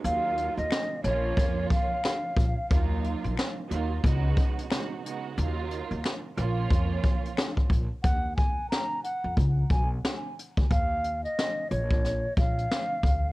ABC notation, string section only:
X:1
M:4/4
L:1/8
Q:"Swing 16ths" 1/4=90
K:Ebm
V:1 name="String section"
[G,B,EF]2 z [F,B,DF]4 z | [G,B,EF]2 z [G,B,EF] [D,A,CEG]2 [D,A,CEG] [D,A,CEG] | [G,B,EF]2 z [F,B,DF]4 z | z8 |
z8 |]